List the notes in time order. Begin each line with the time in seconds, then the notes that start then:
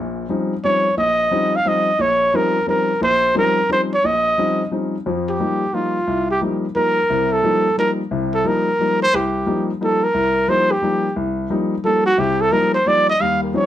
Already playing: A#1 A#2
0.29 F3 G3 C4 C#4 D#4
0.64 F3 G3 C4 C#4 D#4 C#5
0.97 A#1 D#5
1.31 F3 G3 C4 C#4 D#4
1.56 F5
1.65 F3 G3 C4 C#4 D#4 D#5
1.99 A#1 C#5
2.34 F3 G3 C4 C#4 D#4 A#4
2.67 F3 G3 C4 C#4 D#4 A#4
3.01 A#1 C5
3.35 F3 G3 C4 C#4 D#4 A#4
3.69 F3 G3 C4 C#4 D#4 C5
3.94 C#5
4.04 A#1 D#5
4.38 F3 G3 C4 C#4 D#4
4.71 F3 G3 C4 C#4 D#4
5.06 F2 F3
5.29 G4
5.40 F3 G3 A#3 D#4
5.73 F3 G3 A#3 D#4 F4
6.07 C2
6.31 G4
6.41 F3 G3 A#3 D#4
6.75 F3 G3 A#3 D#4 A#4
7.10 C2 C3
7.33 A4
7.43 F3 G3 A#3 D#4
7.78 F3 G3 A#3 D#4 A#4
8.11 C2 C3
8.34 A4
8.45 F3 G3 A#3 D#4 A#4
8.79 F3 G3 A#3 D#4
9.03 C5
9.14 C2 G4
9.46 F3 G3 A#3 D#4
9.81 F3 G3 A#3 D#4 A4
10.04 A#4
10.14 C2
10.48 F3 G3 A#3 D#4 C5
10.72 G4
10.82 F3 G3 A#3 D#4
11.16 C2
11.50 F3 G3 A#3 D#4
11.84 F3 G3 A#3 D#4 A4
12.06 F#4
12.18 C2 C3 G4
12.41 A4
12.51 F3 G3 A#3 D#4 A#4
12.74 C5
12.86 F3 G3 A#3 D#4 D5
13.10 D#5
13.20 D#2 G3 F5
13.44 A#4
13.54 F3 G3 C4 C#4 D#4 C#5